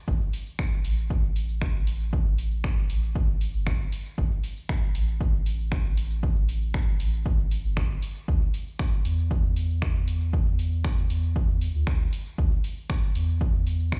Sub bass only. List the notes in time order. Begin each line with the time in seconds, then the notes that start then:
0.08 G1
0.85 A1
2.90 A1
3.54 G1
4.18 G1
4.95 A1
7.00 A1
7.64 G1
8.28 D2
9.05 E2
11.10 E2
11.75 D2
12.38 D2
13.15 E2